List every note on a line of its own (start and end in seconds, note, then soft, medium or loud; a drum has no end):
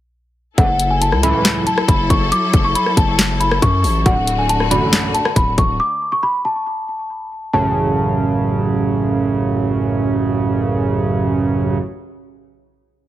0.58 1.14 F#1 loud
0.58 0.67 C#2 medium
0.58 0.67 A2 medium
0.58 0.67 E3 loud
0.58 4.02 F#3 medium
0.58 4.02 E4 medium
0.58 4.02 A4 medium
0.58 0.89 F#5 loud
0.58 kick loud
0.58 closed hi-hat medium
0.79 closed hi-hat medium
0.91 0.99 G#5 medium
1.01 1.18 A5 medium
1.01 closed hi-hat medium
1.12 1.33 C#2 loud
1.12 cross-stick medium
1.23 1.64 C#2 loud
1.23 1.64 A2 loud
1.23 1.64 E3 loud
1.23 1.64 B5 medium
1.23 closed hi-hat loud
1.45 snare loud
1.45 clap loud
1.45 closed hi-hat medium
1.67 1.83 A5 medium
1.67 closed hi-hat medium
1.78 cross-stick loud
1.88 2.09 F#1 loud
1.88 2.05 B5 medium
1.88 kick medium
1.88 closed hi-hat medium
2.10 2.31 F#1 loud
2.10 2.26 C#6 medium
2.10 kick loud
2.10 closed hi-hat medium
2.32 2.63 D6 loud
2.32 closed hi-hat medium
2.54 2.74 F#1 loud
2.54 kick loud
2.54 closed hi-hat medium
2.64 2.73 C#6 medium
2.75 2.92 B5 medium
2.75 closed hi-hat medium
2.86 cross-stick medium
2.97 3.60 F#1 loud
2.97 3.38 A5 medium
2.97 kick loud
2.97 closed hi-hat loud
3.19 snare loud
3.19 clap loud
3.19 closed hi-hat medium
3.40 3.57 B5 medium
3.40 closed hi-hat medium
3.51 cross-stick loud
3.62 3.86 F#2 loud
3.62 4.03 C#6 medium
3.62 kick medium
3.62 closed hi-hat medium
3.84 4.05 A1 loud
3.84 open hi-hat medium
4.06 4.79 D1 loud
4.06 4.15 A1 medium
4.06 4.15 F#2 medium
4.06 4.15 D3 medium
4.06 5.78 D3 medium
4.06 5.78 A3 medium
4.06 5.78 F#4 medium
4.06 4.37 F#5 medium
4.06 kick loud
4.06 closed hi-hat medium
4.27 closed hi-hat medium
4.39 4.47 G#5 medium
4.49 4.66 A5 loud
4.49 closed hi-hat medium
4.60 cross-stick medium
4.71 5.12 A1 medium
4.71 5.12 F#2 loud
4.71 5.12 D3 loud
4.71 5.12 B5 medium
4.71 closed hi-hat loud
4.93 snare loud
4.93 clap loud
4.93 closed hi-hat medium
5.14 5.31 A5 medium
5.14 closed hi-hat medium
5.25 cross-stick loud
5.36 5.57 D1 loud
5.36 5.53 B5 medium
5.36 kick medium
5.36 closed hi-hat medium
5.58 5.79 D1 loud
5.58 5.74 C#6 medium
5.58 kick loud
5.58 closed hi-hat medium
5.80 6.10 D6 medium
6.12 6.20 C#6 medium
6.23 6.39 B5 medium
6.45 7.50 A5 medium
7.53 11.77 A1 medium
7.53 11.77 F#2 medium
7.53 11.77 C#3 loud
7.53 8.80 A5 medium